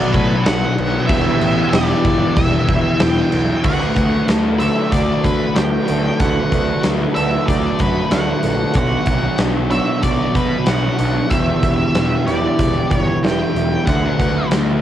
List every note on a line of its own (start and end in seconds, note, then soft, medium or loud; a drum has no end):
0.00 1.07 B2 loud
0.00 0.44 F#3 medium
0.00 1.08 F#3 loud
0.00 1.10 B3 loud
0.00 1.42 B3 medium
0.00 0.13 D4 medium
0.00 1.08 D4 loud
0.00 1.08 F#4 loud
0.00 3.61 B4 medium
0.00 1.09 C#5 loud
0.00 0.14 D5 loud
0.00 1.08 F#5 medium
0.00 1.08 C#6 medium
0.12 0.33 A2 medium
0.12 1.09 D4 medium
0.12 0.46 B4 loud
0.12 kick medium
0.12 crash medium
0.44 0.65 B1 medium
0.44 1.09 F#3 medium
0.44 1.04 F#5 loud
0.44 snare loud
0.44 crash medium
0.78 0.97 B1 loud
0.78 crash medium
1.06 1.28 E1 medium
1.06 3.63 E3 loud
1.06 1.39 G3 medium
1.06 1.70 E5 loud
1.06 kick loud
1.06 crash medium
1.10 3.63 E2 medium
1.10 3.64 B2 loud
1.10 3.63 B3 loud
1.10 3.63 E4 loud
1.10 3.64 G4 loud
1.10 3.64 B4 loud
1.10 3.63 E5 medium
1.10 3.62 G5 medium
1.10 3.62 E6 medium
1.41 1.61 A1 loud
1.41 2.36 G3 medium
1.41 crash medium
1.70 1.92 E1 medium
1.70 2.68 E4 medium
1.70 2.35 D5 loud
1.70 snare loud
1.70 crash medium
2.05 2.24 G1 medium
2.05 3.31 B3 medium
2.05 kick medium
2.05 crash medium
2.35 2.56 E1 medium
2.35 2.99 G3 medium
2.35 3.27 E5 medium
2.35 kick loud
2.35 crash medium
2.68 2.88 E1 loud
2.68 3.64 E4 medium
2.68 kick medium
2.68 crash medium
3.00 3.20 E1 medium
3.00 3.64 G3 medium
3.00 3.64 G5 loud
3.00 snare loud
3.00 crash medium
3.32 3.52 B1 medium
3.32 3.64 B3 medium
3.32 crash medium
3.63 3.84 D2 medium
3.63 4.61 D3 medium
3.63 4.61 F#3 medium
3.63 4.92 F#3 medium
3.63 4.61 A3 loud
3.63 4.60 D4 loud
3.63 4.60 F#4 loud
3.63 4.59 B4 medium
3.63 4.24 F#5 loud
3.63 kick loud
3.63 crash loud
3.96 4.16 D2 medium
3.96 5.24 B3 medium
3.96 kick medium
3.96 closed hi-hat medium
4.28 4.68 D2 medium
4.28 5.87 A4 medium
4.28 snare loud
4.28 closed hi-hat medium
4.60 5.55 D3 medium
4.60 5.56 F#3 medium
4.60 5.54 A3 medium
4.60 5.56 D4 medium
4.60 5.57 D4 medium
4.60 5.57 F#4 medium
4.60 5.58 B4 medium
4.60 4.92 E5 medium
4.60 closed hi-hat medium
4.92 5.12 D2 medium
4.92 6.19 F#3 medium
4.92 5.25 D5 medium
4.92 kick medium
4.92 closed hi-hat medium
5.24 5.44 D3 medium
5.24 6.51 B3 medium
5.24 5.57 B4 medium
5.24 kick medium
5.24 closed hi-hat medium
5.56 5.77 D2 medium
5.56 6.18 D3 medium
5.56 6.20 F#3 medium
5.56 6.19 A3 medium
5.56 7.15 D4 medium
5.56 6.21 D4 medium
5.56 6.21 F#4 medium
5.56 6.22 B4 medium
5.56 6.20 G5 medium
5.56 snare loud
5.56 closed hi-hat medium
5.88 6.09 D2 medium
5.88 6.83 A4 medium
5.88 closed hi-hat medium
6.20 6.40 D2 medium
6.20 7.14 D3 medium
6.20 7.46 F#3 medium
6.20 7.17 F#3 medium
6.20 7.14 A3 medium
6.20 7.16 D4 medium
6.20 7.16 F#4 loud
6.20 7.15 B4 loud
6.20 6.80 F#5 loud
6.20 kick loud
6.20 closed hi-hat medium
6.52 6.72 D2 medium
6.52 7.79 B3 medium
6.52 kick medium
6.52 closed hi-hat medium
6.83 7.05 D2 medium
6.83 8.42 A4 medium
6.83 snare loud
6.83 closed hi-hat medium
7.15 7.36 D2 medium
7.15 8.10 D3 medium
7.15 8.10 F#3 medium
7.15 8.11 A3 medium
7.15 8.10 D4 medium
7.15 8.10 F#4 medium
7.15 8.13 B4 medium
7.15 7.46 E5 medium
7.15 closed hi-hat medium
7.47 7.68 D2 medium
7.47 8.74 F#3 medium
7.47 7.80 D5 medium
7.47 kick medium
7.47 closed hi-hat medium
7.79 8.00 F#2 medium
7.79 11.29 B3 medium
7.79 8.13 B4 medium
7.79 kick medium
7.79 closed hi-hat medium
8.11 8.32 D2 medium
8.11 8.73 D3 medium
8.11 8.73 F#3 medium
8.11 8.74 A3 medium
8.11 8.75 D4 medium
8.11 8.74 D4 medium
8.11 8.74 F#4 medium
8.11 8.77 B4 medium
8.11 8.71 F#5 loud
8.11 snare loud
8.11 closed hi-hat medium
8.43 8.64 A#1 medium
8.43 8.76 A4 medium
8.43 closed hi-hat medium
8.74 8.95 B1 medium
8.74 9.69 B2 medium
8.74 9.06 F#3 medium
8.74 9.70 F#3 loud
8.74 9.71 B3 loud
8.74 9.70 D4 medium
8.74 9.69 F#4 medium
8.74 9.69 C#5 loud
8.74 9.36 F#5 medium
8.74 kick loud
8.74 closed hi-hat medium
9.06 9.27 B1 medium
9.06 10.02 F#3 medium
9.06 kick medium
9.06 closed hi-hat medium
9.38 9.79 B1 medium
9.38 10.98 D4 medium
9.38 snare loud
9.38 closed hi-hat medium
9.70 10.65 B2 medium
9.70 10.66 F#3 medium
9.70 10.67 B3 medium
9.70 10.65 D4 medium
9.70 10.65 F#4 medium
9.70 10.65 C#5 medium
9.70 10.02 E5 medium
9.70 closed hi-hat medium
10.03 10.24 B1 medium
10.03 10.34 F#3 medium
10.03 10.36 D5 medium
10.03 kick medium
10.03 closed hi-hat loud
10.35 10.55 B2 medium
10.35 11.30 F#3 medium
10.35 10.69 B4 medium
10.35 kick medium
10.35 closed hi-hat medium
10.66 10.87 B1 medium
10.66 11.29 B2 medium
10.66 11.29 F#3 medium
10.66 11.31 B3 medium
10.66 11.30 D4 medium
10.66 11.30 F#4 medium
10.66 11.30 C#5 medium
10.66 11.33 F#5 medium
10.66 snare loud
10.66 closed hi-hat medium
10.98 11.19 B1 medium
10.98 11.31 D4 medium
10.98 closed hi-hat medium
11.30 11.51 E1 medium
11.30 12.25 E2 medium
11.30 12.26 B2 medium
11.30 12.25 E3 loud
11.30 12.58 G3 medium
11.30 12.29 B3 medium
11.30 12.26 E4 loud
11.30 12.26 G4 medium
11.30 12.27 B4 loud
11.30 12.26 E5 medium
11.30 kick loud
11.30 closed hi-hat medium
11.63 11.83 E1 medium
11.63 12.90 B3 medium
11.63 kick medium
11.63 closed hi-hat medium
11.94 12.15 E1 medium
11.94 13.53 G4 medium
11.94 snare loud
11.94 closed hi-hat medium
12.26 12.47 E1 medium
12.26 13.86 B2 medium
12.26 13.22 E3 medium
12.26 13.23 B3 medium
12.26 13.22 E4 medium
12.26 13.22 G4 medium
12.26 13.24 B4 medium
12.26 12.91 D5 medium
12.26 closed hi-hat medium
12.31 13.87 E2 medium
12.59 12.79 E1 medium
12.59 13.86 G3 medium
12.59 kick medium
12.59 closed hi-hat medium
12.90 13.11 G1 medium
12.90 14.18 B3 medium
12.90 13.24 C#5 medium
12.90 kick medium
12.90 closed hi-hat medium
13.23 13.43 E1 medium
13.23 13.85 E3 medium
13.23 13.88 B3 medium
13.23 13.87 E4 medium
13.23 13.85 E4 medium
13.23 13.86 G4 medium
13.23 13.89 B4 medium
13.23 13.86 G5 medium
13.23 snare loud
13.23 closed hi-hat medium
13.55 13.75 E1 medium
13.55 13.87 G4 medium
13.55 closed hi-hat medium
13.87 14.08 D2 medium
13.87 14.81 D3 loud
13.87 14.81 F#3 medium
13.87 14.81 A3 loud
13.87 14.81 D4 loud
13.87 14.81 F#4 medium
13.87 14.81 B4 medium
13.87 14.47 F#5 loud
13.87 kick loud
13.87 closed hi-hat medium
14.19 14.40 D2 medium
14.19 14.81 B3 medium
14.19 kick medium
14.19 closed hi-hat medium
14.51 14.81 D2 medium
14.51 14.81 A4 medium
14.51 snare loud
14.51 closed hi-hat medium